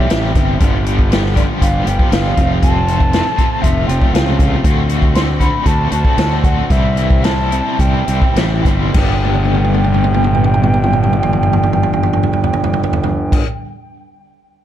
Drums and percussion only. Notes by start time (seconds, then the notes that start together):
0.10 snare, closed hi-hat
0.35 kick, closed hi-hat
0.60 kick, closed hi-hat
0.86 closed hi-hat
0.99 kick
1.12 snare, closed hi-hat
1.25 snare
1.37 kick, closed hi-hat
1.62 kick, closed hi-hat
1.87 closed hi-hat
1.99 kick
2.12 snare, closed hi-hat
2.37 kick, closed hi-hat
2.63 kick, closed hi-hat
2.88 closed hi-hat
3.00 kick
3.13 snare, closed hi-hat
3.38 kick, closed hi-hat
3.64 kick, closed hi-hat
3.89 closed hi-hat
4.02 kick
4.15 snare, closed hi-hat
4.39 kick, closed hi-hat
4.64 kick, closed hi-hat
4.89 closed hi-hat
5.02 kick
5.15 snare, closed hi-hat
5.40 kick, closed hi-hat
5.66 kick, closed hi-hat
5.92 closed hi-hat
6.05 kick
6.18 snare, closed hi-hat
6.44 kick, closed hi-hat
6.70 kick, closed hi-hat
6.97 closed hi-hat
7.10 kick
7.24 snare, closed hi-hat
7.52 closed hi-hat
7.79 kick, closed hi-hat
8.08 closed hi-hat
8.22 kick
8.36 snare, closed hi-hat
8.65 kick, closed hi-hat
8.94 kick, crash
9.24 high tom
9.35 high tom
9.45 high tom
9.55 high tom
9.64 high tom
9.74 high tom
9.84 high tom
9.94 high tom
10.04 high tom
10.14 high tom
10.24 mid tom
10.35 mid tom
10.44 mid tom
10.54 mid tom
10.63 mid tom
10.74 mid tom
10.84 mid tom
10.93 mid tom
11.03 mid tom
11.13 mid tom
11.23 mid tom
11.33 mid tom
11.43 mid tom
11.53 mid tom
11.63 mid tom
11.73 mid tom
11.83 mid tom
11.93 mid tom
12.03 mid tom
12.13 mid tom
12.23 floor tom
12.33 floor tom
12.44 floor tom
12.53 floor tom
12.64 floor tom
12.74 floor tom
12.84 floor tom
12.93 floor tom
13.03 floor tom
13.32 kick, crash